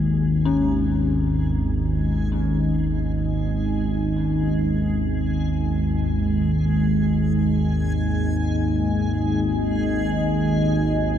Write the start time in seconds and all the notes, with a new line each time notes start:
Already playing: G#1 D#2 G#3 G#4 D#5 G#5
0.45 C#4 D#4
3.67 G#5